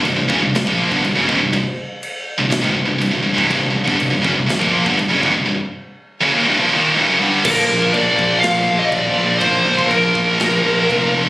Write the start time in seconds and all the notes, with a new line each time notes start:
0.04 C1 C2 G2, crash
0.08 G2
0.16 C1 C2 G2
0.28 F#1 F#2 C#3, kick
0.41 C1 C2 G2
0.54 C1 C2 G2, snare, crash
0.65 A#1 A#2 F3 A#3, kick
0.91 G1 G2 D3, kick
1.03 C1 C2 G2, crash
1.14 F#1 F#2 C#3
1.28 C#1 C#2 G#2, kick
1.40 C1 C2 G2
1.53 C1 C2 G2, kick, crash
2.03 crash
2.39 C1 C2 G2
2.51 C1 C2 G2, snare, crash
2.64 G#1 G#2 D#3, kick
2.76 C1 C2 G2
2.88 C1 C2 G2
3.01 C1 C2 G2, crash
3.14 C1 C2 G2
3.25 C1 C2 G2
3.37 C1 C2 G2, kick
3.49 C1 C2 G2, kick, crash
3.59 C1 C2 G2
3.63 C2 G2
3.70 C2 G2
3.75 C1 C2 G2
3.87 G1 G2 D3, kick
4.00 C1 C2 G2, crash
4.12 C1 C2 G2
4.24 F#1 F#2 C#3, kick
4.37 C1 C2 G2
4.48 C1 C2 G2, snare, crash
4.61 A#1 A#2 F3 A#3, kick
4.86 G1 G2 D3, kick
4.99 C1 C2 G2, crash
5.11 F#1 F#2 C#3
5.23 C#1 C#2 G#2, kick
5.35 C1 C2 G2
5.49 C2 G2
6.22 F#2 C#3
6.35 D#2 A#2
6.48 C2 G2
6.59 A#2 F3
6.72 D#2 A#2 D#3
6.96 C2 G2
7.10 F#2 C#3
7.21 G2 D3 G3
7.45 A#1 A#2 F3 A#3 A#4, kick, crash
7.53 A#2 F3
7.61 A#2 F3
7.68 A#1 A#2 F3
7.77 A#2 F3
7.82 A#2 F3, kick
7.92 A#1 A#2 F3 D5, kick, crash
8.01 A#2 F3
8.08 A#2 F3
8.16 A#1 A#2 F3, kick
8.24 A#2 F3
8.32 A#2 F3
8.39 A#2 F3 F5, crash
8.44 A#1 A#2 F3, snare
8.55 A#2 F3
8.64 A#2 F3
8.69 A#1 A#2 F3
8.78 A#2 F3 D#5
8.86 A#2 F3 D5
8.92 D#1 A#2 F3, kick, crash
9.01 A#2 F3
9.09 A#2 F3
9.18 A#1 A#2 F3
9.25 A#2 F3
9.33 A#2 F3
9.38 A#1 C5, kick, crash
9.42 A#2 F3 A#3
9.50 A#2 F3
9.58 A#2 F3
9.65 A#1 A#2 F3
9.73 A#2 F3
9.79 A#2 F3, kick
9.88 A#1 A#2 F3 A#4, kick, crash
9.97 A#2 F3
10.04 A#2 F3
10.11 A#1 A#2 F3, kick
10.19 A#2 F3
10.27 A#2 F3
10.34 A#2 F3
10.40 A#1 F3, snare, crash
10.44 A#2
10.50 A#2 F3
10.56 A#2 F3
10.65 A#1 A#2 F3
10.73 A#2 F3
10.79 F3
10.83 A#2 F3
10.90 F1 A#2, kick, crash
10.95 A#2 F3
11.02 F3
11.08 A#2 F3
11.15 A#2 F3
11.22 A#2 F3